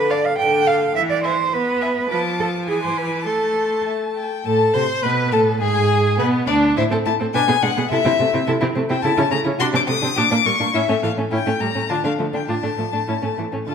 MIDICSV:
0, 0, Header, 1, 5, 480
1, 0, Start_track
1, 0, Key_signature, 0, "minor"
1, 0, Tempo, 572519
1, 798, Time_signature, 2, 2, 24, 8
1, 2246, Tempo, 585366
1, 5126, Tempo, 569801
1, 7524, Key_signature, -1, "minor"
1, 9446, Tempo, 588235
1, 11425, End_track
2, 0, Start_track
2, 0, Title_t, "Violin"
2, 0, Program_c, 0, 40
2, 88, Note_on_c, 0, 81, 50
2, 155, Note_off_c, 0, 81, 0
2, 557, Note_on_c, 0, 81, 53
2, 624, Note_off_c, 0, 81, 0
2, 1041, Note_on_c, 0, 80, 54
2, 1108, Note_off_c, 0, 80, 0
2, 1522, Note_on_c, 0, 80, 51
2, 1589, Note_off_c, 0, 80, 0
2, 1757, Note_on_c, 0, 86, 61
2, 2210, Note_off_c, 0, 86, 0
2, 2244, Note_on_c, 0, 86, 57
2, 2721, Note_on_c, 0, 84, 46
2, 2733, Note_off_c, 0, 86, 0
2, 3206, Note_off_c, 0, 84, 0
2, 3211, Note_on_c, 0, 76, 59
2, 3277, Note_off_c, 0, 76, 0
2, 3454, Note_on_c, 0, 79, 64
2, 3697, Note_on_c, 0, 81, 69
2, 3709, Note_off_c, 0, 79, 0
2, 3933, Note_on_c, 0, 84, 75
2, 3945, Note_off_c, 0, 81, 0
2, 4164, Note_off_c, 0, 84, 0
2, 4169, Note_on_c, 0, 83, 75
2, 4234, Note_off_c, 0, 83, 0
2, 4410, Note_on_c, 0, 81, 80
2, 4475, Note_off_c, 0, 81, 0
2, 4652, Note_on_c, 0, 80, 90
2, 5116, Note_off_c, 0, 80, 0
2, 5123, Note_on_c, 0, 71, 75
2, 5190, Note_off_c, 0, 71, 0
2, 5362, Note_on_c, 0, 74, 83
2, 5430, Note_off_c, 0, 74, 0
2, 5611, Note_on_c, 0, 76, 78
2, 5679, Note_off_c, 0, 76, 0
2, 5853, Note_on_c, 0, 81, 86
2, 5921, Note_off_c, 0, 81, 0
2, 6095, Note_on_c, 0, 80, 102
2, 6335, Note_on_c, 0, 78, 93
2, 6347, Note_off_c, 0, 80, 0
2, 6563, Note_off_c, 0, 78, 0
2, 6568, Note_on_c, 0, 76, 98
2, 7037, Note_off_c, 0, 76, 0
2, 7407, Note_on_c, 0, 79, 81
2, 7508, Note_on_c, 0, 81, 90
2, 7521, Note_off_c, 0, 79, 0
2, 7749, Note_off_c, 0, 81, 0
2, 7755, Note_on_c, 0, 82, 90
2, 7822, Note_off_c, 0, 82, 0
2, 7994, Note_on_c, 0, 84, 101
2, 8043, Note_off_c, 0, 84, 0
2, 8127, Note_on_c, 0, 86, 94
2, 8173, Note_off_c, 0, 86, 0
2, 8237, Note_on_c, 0, 87, 105
2, 8478, Note_on_c, 0, 86, 107
2, 8490, Note_off_c, 0, 87, 0
2, 8715, Note_on_c, 0, 85, 96
2, 8728, Note_off_c, 0, 86, 0
2, 8960, Note_on_c, 0, 76, 86
2, 8972, Note_off_c, 0, 85, 0
2, 9199, Note_off_c, 0, 76, 0
2, 9204, Note_on_c, 0, 77, 75
2, 9272, Note_off_c, 0, 77, 0
2, 9448, Note_on_c, 0, 79, 85
2, 9681, Note_on_c, 0, 82, 81
2, 9694, Note_off_c, 0, 79, 0
2, 9913, Note_on_c, 0, 81, 71
2, 9925, Note_off_c, 0, 82, 0
2, 10031, Note_off_c, 0, 81, 0
2, 10036, Note_on_c, 0, 77, 70
2, 10101, Note_off_c, 0, 77, 0
2, 10280, Note_on_c, 0, 79, 58
2, 10386, Note_off_c, 0, 79, 0
2, 10390, Note_on_c, 0, 81, 71
2, 11107, Note_off_c, 0, 81, 0
2, 11356, Note_on_c, 0, 81, 56
2, 11425, Note_off_c, 0, 81, 0
2, 11425, End_track
3, 0, Start_track
3, 0, Title_t, "Violin"
3, 0, Program_c, 1, 40
3, 84, Note_on_c, 1, 77, 51
3, 151, Note_off_c, 1, 77, 0
3, 557, Note_on_c, 1, 77, 55
3, 625, Note_off_c, 1, 77, 0
3, 1040, Note_on_c, 1, 76, 53
3, 1107, Note_off_c, 1, 76, 0
3, 1522, Note_on_c, 1, 76, 51
3, 1589, Note_off_c, 1, 76, 0
3, 1762, Note_on_c, 1, 81, 55
3, 2212, Note_off_c, 1, 81, 0
3, 2244, Note_on_c, 1, 80, 51
3, 2717, Note_off_c, 1, 80, 0
3, 2722, Note_on_c, 1, 81, 48
3, 3515, Note_off_c, 1, 81, 0
3, 3696, Note_on_c, 1, 69, 59
3, 3920, Note_off_c, 1, 69, 0
3, 3940, Note_on_c, 1, 72, 61
3, 4006, Note_off_c, 1, 72, 0
3, 4178, Note_on_c, 1, 71, 69
3, 4416, Note_on_c, 1, 69, 72
3, 4428, Note_off_c, 1, 71, 0
3, 4644, Note_off_c, 1, 69, 0
3, 4649, Note_on_c, 1, 68, 76
3, 5115, Note_off_c, 1, 68, 0
3, 5126, Note_on_c, 1, 59, 70
3, 5364, Note_off_c, 1, 59, 0
3, 5370, Note_on_c, 1, 62, 76
3, 5606, Note_off_c, 1, 62, 0
3, 5618, Note_on_c, 1, 72, 85
3, 5665, Note_off_c, 1, 72, 0
3, 5738, Note_on_c, 1, 69, 55
3, 5785, Note_off_c, 1, 69, 0
3, 5855, Note_on_c, 1, 64, 53
3, 5903, Note_off_c, 1, 64, 0
3, 5979, Note_on_c, 1, 69, 55
3, 6026, Note_off_c, 1, 69, 0
3, 6097, Note_on_c, 1, 71, 80
3, 6144, Note_off_c, 1, 71, 0
3, 6215, Note_on_c, 1, 68, 56
3, 6263, Note_off_c, 1, 68, 0
3, 6335, Note_on_c, 1, 62, 64
3, 6382, Note_off_c, 1, 62, 0
3, 6456, Note_on_c, 1, 68, 61
3, 6502, Note_off_c, 1, 68, 0
3, 6580, Note_on_c, 1, 69, 82
3, 6626, Note_off_c, 1, 69, 0
3, 6698, Note_on_c, 1, 64, 56
3, 6744, Note_off_c, 1, 64, 0
3, 6814, Note_on_c, 1, 60, 56
3, 6861, Note_off_c, 1, 60, 0
3, 6929, Note_on_c, 1, 64, 64
3, 6977, Note_off_c, 1, 64, 0
3, 7045, Note_on_c, 1, 69, 85
3, 7094, Note_off_c, 1, 69, 0
3, 7162, Note_on_c, 1, 64, 65
3, 7211, Note_off_c, 1, 64, 0
3, 7283, Note_on_c, 1, 60, 68
3, 7332, Note_off_c, 1, 60, 0
3, 7402, Note_on_c, 1, 64, 61
3, 7450, Note_off_c, 1, 64, 0
3, 7520, Note_on_c, 1, 69, 77
3, 7568, Note_off_c, 1, 69, 0
3, 7638, Note_on_c, 1, 64, 63
3, 7686, Note_off_c, 1, 64, 0
3, 7750, Note_on_c, 1, 61, 57
3, 7800, Note_off_c, 1, 61, 0
3, 7865, Note_on_c, 1, 64, 61
3, 7916, Note_off_c, 1, 64, 0
3, 7988, Note_on_c, 1, 66, 81
3, 8038, Note_off_c, 1, 66, 0
3, 8107, Note_on_c, 1, 62, 63
3, 8157, Note_off_c, 1, 62, 0
3, 8223, Note_on_c, 1, 60, 63
3, 8274, Note_off_c, 1, 60, 0
3, 8348, Note_on_c, 1, 62, 58
3, 8398, Note_off_c, 1, 62, 0
3, 8467, Note_on_c, 1, 67, 74
3, 8518, Note_off_c, 1, 67, 0
3, 8594, Note_on_c, 1, 62, 56
3, 8644, Note_off_c, 1, 62, 0
3, 8713, Note_on_c, 1, 58, 61
3, 8763, Note_off_c, 1, 58, 0
3, 8838, Note_on_c, 1, 62, 51
3, 8887, Note_off_c, 1, 62, 0
3, 8953, Note_on_c, 1, 64, 75
3, 9004, Note_off_c, 1, 64, 0
3, 9081, Note_on_c, 1, 61, 59
3, 9130, Note_off_c, 1, 61, 0
3, 9199, Note_on_c, 1, 57, 64
3, 9249, Note_off_c, 1, 57, 0
3, 9326, Note_on_c, 1, 61, 59
3, 9374, Note_off_c, 1, 61, 0
3, 9441, Note_on_c, 1, 64, 77
3, 9489, Note_off_c, 1, 64, 0
3, 9566, Note_on_c, 1, 61, 49
3, 9613, Note_off_c, 1, 61, 0
3, 9677, Note_on_c, 1, 57, 51
3, 9725, Note_off_c, 1, 57, 0
3, 9798, Note_on_c, 1, 61, 53
3, 9846, Note_off_c, 1, 61, 0
3, 9915, Note_on_c, 1, 65, 63
3, 9963, Note_off_c, 1, 65, 0
3, 10034, Note_on_c, 1, 62, 54
3, 10083, Note_off_c, 1, 62, 0
3, 10155, Note_on_c, 1, 57, 57
3, 10203, Note_off_c, 1, 57, 0
3, 10275, Note_on_c, 1, 62, 43
3, 10324, Note_off_c, 1, 62, 0
3, 10395, Note_on_c, 1, 65, 57
3, 10444, Note_off_c, 1, 65, 0
3, 10517, Note_on_c, 1, 62, 43
3, 10566, Note_off_c, 1, 62, 0
3, 10638, Note_on_c, 1, 57, 40
3, 10686, Note_off_c, 1, 57, 0
3, 10757, Note_on_c, 1, 62, 41
3, 10806, Note_off_c, 1, 62, 0
3, 10880, Note_on_c, 1, 64, 55
3, 10929, Note_off_c, 1, 64, 0
3, 10999, Note_on_c, 1, 61, 43
3, 11049, Note_off_c, 1, 61, 0
3, 11127, Note_on_c, 1, 57, 46
3, 11175, Note_off_c, 1, 57, 0
3, 11245, Note_on_c, 1, 61, 45
3, 11293, Note_off_c, 1, 61, 0
3, 11368, Note_on_c, 1, 69, 42
3, 11425, Note_off_c, 1, 69, 0
3, 11425, End_track
4, 0, Start_track
4, 0, Title_t, "Viola"
4, 0, Program_c, 2, 41
4, 0, Note_on_c, 2, 50, 67
4, 241, Note_off_c, 2, 50, 0
4, 323, Note_on_c, 2, 50, 64
4, 719, Note_off_c, 2, 50, 0
4, 799, Note_on_c, 2, 52, 70
4, 1199, Note_off_c, 2, 52, 0
4, 1279, Note_on_c, 2, 59, 68
4, 1682, Note_off_c, 2, 59, 0
4, 1763, Note_on_c, 2, 53, 64
4, 2242, Note_on_c, 2, 52, 54
4, 2255, Note_off_c, 2, 53, 0
4, 2722, Note_on_c, 2, 57, 49
4, 2735, Note_off_c, 2, 52, 0
4, 3531, Note_off_c, 2, 57, 0
4, 3698, Note_on_c, 2, 69, 60
4, 3937, Note_on_c, 2, 72, 68
4, 3950, Note_off_c, 2, 69, 0
4, 4176, Note_on_c, 2, 71, 72
4, 4188, Note_off_c, 2, 72, 0
4, 4407, Note_off_c, 2, 71, 0
4, 4412, Note_on_c, 2, 69, 65
4, 4478, Note_off_c, 2, 69, 0
4, 4648, Note_on_c, 2, 68, 74
4, 5127, Note_on_c, 2, 59, 70
4, 5139, Note_off_c, 2, 68, 0
4, 5371, Note_on_c, 2, 62, 69
4, 5384, Note_off_c, 2, 59, 0
4, 5605, Note_off_c, 2, 62, 0
4, 5610, Note_on_c, 2, 64, 68
4, 5658, Note_off_c, 2, 64, 0
4, 5729, Note_on_c, 2, 60, 48
4, 5777, Note_off_c, 2, 60, 0
4, 5856, Note_on_c, 2, 57, 53
4, 5903, Note_off_c, 2, 57, 0
4, 5974, Note_on_c, 2, 60, 56
4, 6022, Note_off_c, 2, 60, 0
4, 6096, Note_on_c, 2, 62, 86
4, 6143, Note_off_c, 2, 62, 0
4, 6208, Note_on_c, 2, 59, 59
4, 6257, Note_off_c, 2, 59, 0
4, 6333, Note_on_c, 2, 56, 67
4, 6381, Note_off_c, 2, 56, 0
4, 6456, Note_on_c, 2, 59, 63
4, 6503, Note_off_c, 2, 59, 0
4, 6578, Note_on_c, 2, 64, 81
4, 6624, Note_off_c, 2, 64, 0
4, 6691, Note_on_c, 2, 60, 57
4, 6738, Note_off_c, 2, 60, 0
4, 6816, Note_on_c, 2, 57, 57
4, 6863, Note_off_c, 2, 57, 0
4, 6934, Note_on_c, 2, 60, 61
4, 6981, Note_off_c, 2, 60, 0
4, 7051, Note_on_c, 2, 64, 75
4, 7098, Note_off_c, 2, 64, 0
4, 7171, Note_on_c, 2, 60, 58
4, 7218, Note_off_c, 2, 60, 0
4, 7291, Note_on_c, 2, 57, 67
4, 7338, Note_off_c, 2, 57, 0
4, 7407, Note_on_c, 2, 60, 61
4, 7454, Note_off_c, 2, 60, 0
4, 7525, Note_on_c, 2, 64, 89
4, 7572, Note_off_c, 2, 64, 0
4, 7640, Note_on_c, 2, 61, 54
4, 7688, Note_off_c, 2, 61, 0
4, 7759, Note_on_c, 2, 57, 60
4, 7807, Note_off_c, 2, 57, 0
4, 7880, Note_on_c, 2, 61, 65
4, 7927, Note_off_c, 2, 61, 0
4, 7998, Note_on_c, 2, 62, 83
4, 8046, Note_off_c, 2, 62, 0
4, 8117, Note_on_c, 2, 60, 60
4, 8165, Note_off_c, 2, 60, 0
4, 8239, Note_on_c, 2, 57, 61
4, 8287, Note_off_c, 2, 57, 0
4, 8361, Note_on_c, 2, 60, 70
4, 8409, Note_off_c, 2, 60, 0
4, 8475, Note_on_c, 2, 62, 85
4, 8524, Note_off_c, 2, 62, 0
4, 8600, Note_on_c, 2, 58, 55
4, 8648, Note_off_c, 2, 58, 0
4, 8720, Note_on_c, 2, 55, 54
4, 8769, Note_off_c, 2, 55, 0
4, 8841, Note_on_c, 2, 58, 59
4, 8890, Note_off_c, 2, 58, 0
4, 8963, Note_on_c, 2, 61, 76
4, 9011, Note_off_c, 2, 61, 0
4, 9081, Note_on_c, 2, 57, 66
4, 9130, Note_off_c, 2, 57, 0
4, 9202, Note_on_c, 2, 52, 56
4, 9251, Note_off_c, 2, 52, 0
4, 9323, Note_on_c, 2, 57, 56
4, 9372, Note_off_c, 2, 57, 0
4, 9446, Note_on_c, 2, 61, 71
4, 9493, Note_off_c, 2, 61, 0
4, 9563, Note_on_c, 2, 57, 49
4, 9610, Note_off_c, 2, 57, 0
4, 9683, Note_on_c, 2, 55, 47
4, 9730, Note_off_c, 2, 55, 0
4, 9800, Note_on_c, 2, 57, 52
4, 9847, Note_off_c, 2, 57, 0
4, 9918, Note_on_c, 2, 62, 62
4, 9966, Note_off_c, 2, 62, 0
4, 10039, Note_on_c, 2, 57, 44
4, 10087, Note_off_c, 2, 57, 0
4, 10157, Note_on_c, 2, 53, 46
4, 10205, Note_off_c, 2, 53, 0
4, 10274, Note_on_c, 2, 57, 45
4, 10323, Note_off_c, 2, 57, 0
4, 10397, Note_on_c, 2, 62, 59
4, 10446, Note_off_c, 2, 62, 0
4, 10517, Note_on_c, 2, 57, 38
4, 10566, Note_off_c, 2, 57, 0
4, 10641, Note_on_c, 2, 53, 36
4, 10689, Note_off_c, 2, 53, 0
4, 10763, Note_on_c, 2, 57, 46
4, 10811, Note_off_c, 2, 57, 0
4, 10881, Note_on_c, 2, 61, 57
4, 10929, Note_off_c, 2, 61, 0
4, 11006, Note_on_c, 2, 57, 50
4, 11054, Note_off_c, 2, 57, 0
4, 11130, Note_on_c, 2, 52, 45
4, 11178, Note_off_c, 2, 52, 0
4, 11250, Note_on_c, 2, 57, 42
4, 11297, Note_off_c, 2, 57, 0
4, 11370, Note_on_c, 2, 65, 40
4, 11425, Note_off_c, 2, 65, 0
4, 11425, End_track
5, 0, Start_track
5, 0, Title_t, "Cello"
5, 0, Program_c, 3, 42
5, 0, Note_on_c, 3, 71, 79
5, 86, Note_on_c, 3, 74, 77
5, 98, Note_off_c, 3, 71, 0
5, 211, Note_on_c, 3, 77, 78
5, 224, Note_off_c, 3, 74, 0
5, 321, Note_off_c, 3, 77, 0
5, 326, Note_on_c, 3, 79, 81
5, 564, Note_on_c, 3, 77, 72
5, 577, Note_off_c, 3, 79, 0
5, 797, Note_off_c, 3, 77, 0
5, 802, Note_on_c, 3, 76, 93
5, 849, Note_off_c, 3, 76, 0
5, 927, Note_on_c, 3, 74, 70
5, 1038, Note_off_c, 3, 74, 0
5, 1043, Note_on_c, 3, 72, 73
5, 1286, Note_on_c, 3, 71, 74
5, 1298, Note_off_c, 3, 72, 0
5, 1762, Note_off_c, 3, 71, 0
5, 1767, Note_on_c, 3, 71, 84
5, 1834, Note_off_c, 3, 71, 0
5, 2012, Note_on_c, 3, 69, 60
5, 2079, Note_off_c, 3, 69, 0
5, 2249, Note_on_c, 3, 68, 63
5, 2364, Note_off_c, 3, 68, 0
5, 2374, Note_on_c, 3, 72, 58
5, 2489, Note_on_c, 3, 71, 52
5, 2501, Note_off_c, 3, 72, 0
5, 2725, Note_off_c, 3, 71, 0
5, 2730, Note_on_c, 3, 69, 54
5, 3208, Note_off_c, 3, 69, 0
5, 3705, Note_on_c, 3, 45, 63
5, 3925, Note_off_c, 3, 45, 0
5, 3939, Note_on_c, 3, 48, 71
5, 4005, Note_off_c, 3, 48, 0
5, 4175, Note_on_c, 3, 47, 68
5, 4411, Note_on_c, 3, 45, 71
5, 4423, Note_off_c, 3, 47, 0
5, 4649, Note_on_c, 3, 44, 76
5, 4661, Note_off_c, 3, 45, 0
5, 5126, Note_on_c, 3, 47, 68
5, 5138, Note_off_c, 3, 44, 0
5, 5364, Note_off_c, 3, 47, 0
5, 5370, Note_on_c, 3, 38, 74
5, 5606, Note_off_c, 3, 38, 0
5, 5609, Note_on_c, 3, 45, 79
5, 5658, Note_off_c, 3, 45, 0
5, 5732, Note_on_c, 3, 45, 56
5, 5780, Note_off_c, 3, 45, 0
5, 5855, Note_on_c, 3, 45, 58
5, 5902, Note_off_c, 3, 45, 0
5, 5978, Note_on_c, 3, 45, 55
5, 6025, Note_off_c, 3, 45, 0
5, 6097, Note_on_c, 3, 47, 79
5, 6144, Note_off_c, 3, 47, 0
5, 6217, Note_on_c, 3, 47, 58
5, 6264, Note_off_c, 3, 47, 0
5, 6335, Note_on_c, 3, 47, 58
5, 6382, Note_off_c, 3, 47, 0
5, 6458, Note_on_c, 3, 47, 59
5, 6505, Note_off_c, 3, 47, 0
5, 6572, Note_on_c, 3, 48, 85
5, 6620, Note_off_c, 3, 48, 0
5, 6692, Note_on_c, 3, 48, 59
5, 6739, Note_off_c, 3, 48, 0
5, 6812, Note_on_c, 3, 48, 64
5, 6859, Note_off_c, 3, 48, 0
5, 6932, Note_on_c, 3, 48, 63
5, 6979, Note_off_c, 3, 48, 0
5, 7051, Note_on_c, 3, 48, 87
5, 7098, Note_off_c, 3, 48, 0
5, 7168, Note_on_c, 3, 48, 56
5, 7216, Note_off_c, 3, 48, 0
5, 7287, Note_on_c, 3, 48, 62
5, 7335, Note_off_c, 3, 48, 0
5, 7406, Note_on_c, 3, 48, 63
5, 7453, Note_off_c, 3, 48, 0
5, 7520, Note_on_c, 3, 49, 90
5, 7568, Note_off_c, 3, 49, 0
5, 7641, Note_on_c, 3, 49, 63
5, 7689, Note_off_c, 3, 49, 0
5, 7756, Note_on_c, 3, 49, 63
5, 7804, Note_off_c, 3, 49, 0
5, 7874, Note_on_c, 3, 49, 60
5, 7923, Note_off_c, 3, 49, 0
5, 7993, Note_on_c, 3, 48, 84
5, 8042, Note_off_c, 3, 48, 0
5, 8111, Note_on_c, 3, 48, 59
5, 8161, Note_off_c, 3, 48, 0
5, 8235, Note_on_c, 3, 48, 64
5, 8284, Note_off_c, 3, 48, 0
5, 8352, Note_on_c, 3, 48, 60
5, 8402, Note_off_c, 3, 48, 0
5, 8473, Note_on_c, 3, 46, 77
5, 8523, Note_off_c, 3, 46, 0
5, 8596, Note_on_c, 3, 46, 55
5, 8645, Note_off_c, 3, 46, 0
5, 8716, Note_on_c, 3, 46, 57
5, 8765, Note_off_c, 3, 46, 0
5, 8837, Note_on_c, 3, 46, 59
5, 8886, Note_off_c, 3, 46, 0
5, 8958, Note_on_c, 3, 45, 71
5, 9008, Note_off_c, 3, 45, 0
5, 9080, Note_on_c, 3, 45, 55
5, 9129, Note_off_c, 3, 45, 0
5, 9198, Note_on_c, 3, 45, 57
5, 9248, Note_off_c, 3, 45, 0
5, 9319, Note_on_c, 3, 45, 54
5, 9369, Note_off_c, 3, 45, 0
5, 9439, Note_on_c, 3, 45, 72
5, 9488, Note_off_c, 3, 45, 0
5, 9561, Note_on_c, 3, 45, 53
5, 9609, Note_off_c, 3, 45, 0
5, 9677, Note_on_c, 3, 45, 54
5, 9725, Note_off_c, 3, 45, 0
5, 9796, Note_on_c, 3, 45, 51
5, 9844, Note_off_c, 3, 45, 0
5, 9914, Note_on_c, 3, 50, 65
5, 9963, Note_off_c, 3, 50, 0
5, 10036, Note_on_c, 3, 50, 42
5, 10084, Note_off_c, 3, 50, 0
5, 10156, Note_on_c, 3, 50, 47
5, 10205, Note_off_c, 3, 50, 0
5, 10273, Note_on_c, 3, 50, 46
5, 10322, Note_off_c, 3, 50, 0
5, 10395, Note_on_c, 3, 45, 61
5, 10444, Note_off_c, 3, 45, 0
5, 10515, Note_on_c, 3, 45, 43
5, 10564, Note_off_c, 3, 45, 0
5, 10633, Note_on_c, 3, 45, 42
5, 10682, Note_off_c, 3, 45, 0
5, 10756, Note_on_c, 3, 45, 45
5, 10805, Note_off_c, 3, 45, 0
5, 10878, Note_on_c, 3, 45, 61
5, 10928, Note_off_c, 3, 45, 0
5, 11000, Note_on_c, 3, 45, 44
5, 11050, Note_off_c, 3, 45, 0
5, 11122, Note_on_c, 3, 45, 42
5, 11171, Note_off_c, 3, 45, 0
5, 11246, Note_on_c, 3, 45, 39
5, 11294, Note_off_c, 3, 45, 0
5, 11362, Note_on_c, 3, 50, 48
5, 11425, Note_off_c, 3, 50, 0
5, 11425, End_track
0, 0, End_of_file